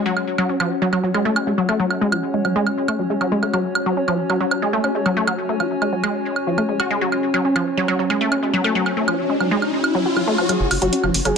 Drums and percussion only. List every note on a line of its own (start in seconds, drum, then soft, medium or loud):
0.17 high woodblock soft
0.38 high woodblock soft
0.60 high woodblock medium
0.93 high woodblock soft
1.14 high woodblock soft
1.36 high woodblock medium
1.69 high woodblock soft
1.91 high woodblock soft
2.12 high woodblock medium
2.45 high woodblock soft
2.67 high woodblock soft
2.88 high woodblock medium
3.21 high woodblock soft
3.43 high woodblock soft
3.54 high woodblock soft
3.75 high woodblock medium
4.08 high woodblock soft
4.30 high woodblock soft
4.51 high woodblock medium
4.84 high woodblock soft
5.06 high woodblock soft
5.27 high woodblock medium
5.60 high woodblock soft
5.82 high woodblock soft
6.04 high woodblock medium
6.36 high woodblock soft
6.58 high woodblock soft
6.80 high woodblock medium
7.12 high woodblock soft
7.34 high woodblock soft
7.56 high woodblock medium
7.88 high woodblock soft
8.10 high woodblock soft
8.32 high woodblock medium
8.64 high woodblock soft
8.86 high woodblock soft
9.08 high woodblock medium
9.40 high woodblock soft
9.62 high woodblock soft
9.84 high woodblock medium
10.17 high woodblock soft
10.38 high woodblock soft
10.49 closed hi-hat medium
10.49 high woodblock soft
10.71 open hi-hat loud
10.71 high woodblock medium
10.82 closed hi-hat medium
10.93 closed hi-hat medium
11.04 high woodblock soft
11.14 open hi-hat medium
11.25 closed hi-hat medium
11.25 high woodblock soft